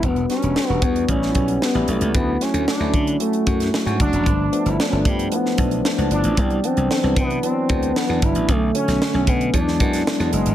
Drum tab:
HH |xxxx--xxx-xx--xx|x-xx--xxxxxx-xxx|x-xx--xxx-xx-xxx|xxxx--xxx-xx--xx|
SD |--o-o----o--o---|--o-o------oo---|----o----o--o---|----o-------o---|
BD |o-----o-o-o-----|o-----o---o---o-|o-----o---o-----|o-----o---o---o-|

HH |x-xx--xxx-xx-xxx|
SD |---oo----o-oo---|
BD |o-----o-o-o-----|